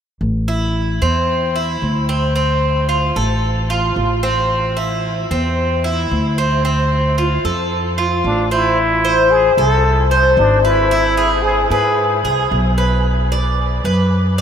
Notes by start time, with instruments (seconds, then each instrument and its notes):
0.21 upright bass A1
0.48 cuban tres E4
1.02 upright bass E2, cuban tres C4
1.56 cuban tres E4
1.82 upright bass D2
2.09 cuban tres C4
2.36 cuban tres C4
2.89 cuban tres F4
3.16 upright bass A1, cuban tres A4
3.70 cuban tres F4
3.96 upright bass A1
4.23 cuban tres C4
4.77 cuban tres E4
5.31 upright bass E2, cuban tres C4
5.84 cuban tres E4
6.11 upright bass D2
6.38 cuban tres C4
6.65 cuban tres C4
7.18 cuban tres F4
7.45 upright bass F2, cuban tres A4
7.98 cuban tres F4
8.24 upright bass A1, muted trumpet D4
8.51 cuban tres C4, muted trumpet E4
9.05 cuban tres C5
9.30 muted trumpet G#4
9.57 upright bass C2, muted trumpet A4, cuban tres A4
10.11 cuban tres C5
10.37 upright bass G#1, muted trumpet D4
10.64 muted trumpet E4, cuban tres B4
10.91 cuban tres E4
11.17 cuban tres G#4
11.42 muted trumpet G#4
11.70 upright bass G#2, muted trumpet G#4, cuban tres B4
12.24 upright bass C2, cuban tres G#4
12.51 upright bass B1
12.78 cuban tres B4
13.32 cuban tres D5
13.84 upright bass F#2, cuban tres B4
14.38 cuban tres D5